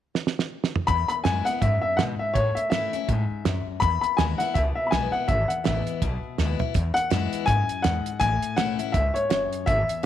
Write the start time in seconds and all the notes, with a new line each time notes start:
0.15 snare
0.27 snare
0.39 snare
0.64 snare
0.76 mid tom
0.87 E2 B5, kick, closed hi-hat
1.08 B5, closed hi-hat
1.24 F#2 E3 G#3 B3 E4 G#5, snare, closed hi-hat
1.45 B3 E4 F#5, closed hi-hat
1.61 F#2 G#2 E5, kick, closed hi-hat
1.82 E5, muted upright bass stroke
1.97 G#2 B2 F#5, snare, closed hi-hat
2.19 E5, muted upright bass stroke
2.34 A2 C#5, kick, closed hi-hat
2.55 E5, muted upright bass stroke, closed hi-hat
2.70 G#2 E3 A3 C#4 E4 E5, snare, closed hi-hat
2.93 C#4 E4, muted upright bass stroke, closed hi-hat
3.09 G#2 A2, kick, closed hi-hat
3.30 muted upright bass stroke
3.45 F#2, snare, closed hi-hat
3.66 muted upright bass stroke
3.80 E2 B5, kick, closed hi-hat
4.01 B5, muted upright bass stroke, closed hi-hat
4.17 D#2 E3 G#3 B3 E4 G#5, snare, closed hi-hat
4.38 E4 F#5, closed hi-hat
4.43 B3
4.54 C#2 B2 E5, kick, closed hi-hat
4.75 E5, muted upright bass stroke
4.87 B5
4.91 B1 E3 G#3 B3 E4 G#5, snare, closed hi-hat
5.12 B3 E4 F#5, muted upright bass stroke
5.28 G#1 E2 E5, kick, closed hi-hat
5.48 F#5, muted upright bass stroke, closed hi-hat
5.64 A1 E3 G#3 B3 E4 E5, snare, closed hi-hat
5.87 muted upright bass stroke, closed hi-hat
6.02 B1 B2, kick, closed hi-hat
6.23 muted upright bass stroke
6.38 D#2 E3 G#3 B3 E4, snare
6.59 B3 E4, floor tom
6.74 E2, kick, closed hi-hat
6.94 F#5, muted upright bass stroke, closed hi-hat
7.10 F#2 E3 G#3 B3 E4, snare, closed hi-hat
7.33 muted upright bass stroke, closed hi-hat
7.46 F#2 G#2 G#5, kick, closed hi-hat
7.69 muted upright bass stroke, closed hi-hat
7.82 E2 G#2 F#5, snare, closed hi-hat
8.06 muted upright bass stroke, closed hi-hat
8.20 A1 A2 G#5, kick, closed hi-hat
8.42 muted upright bass stroke, closed hi-hat
8.56 B1 E3 A3 C#4 E4 F#5, snare, closed hi-hat
8.79 C#4 E4, muted upright bass stroke, closed hi-hat
8.92 C#2 G#2 E5, kick, closed hi-hat
9.14 C#5, closed hi-hat
9.30 F#1 F#2 C#5, snare, closed hi-hat
9.52 muted upright bass stroke, closed hi-hat
9.66 G#1 E2 E5, kick, closed hi-hat
9.88 muted upright bass stroke, closed hi-hat